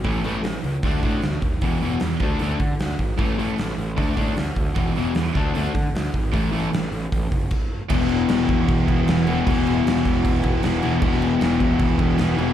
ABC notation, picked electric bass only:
X:1
M:4/4
L:1/8
Q:1/4=153
K:Emix
V:1 name="Picked electric bass" clef=bass
A,,, A,,, A,,, C,, D,, A,, D,, ^D,, | E,,, E,,, E,, D,, D,, D, D,, G,,, | A,,, A,,, A,,, A,,, D,, A,, D,, D,, | E,,, E,,, E,, D,, D,, D, D,, G,,, |
A,,, A,,, A,,, A,,, A,,, F,,, z2 | E,,,2 E,,, E,,, E,,,2 E,,,2 | E,,,2 E,,, E,,, E,,,2 E,,, E,,, | E,,,2 E,,, E,,, E,,,2 E,,,2 |]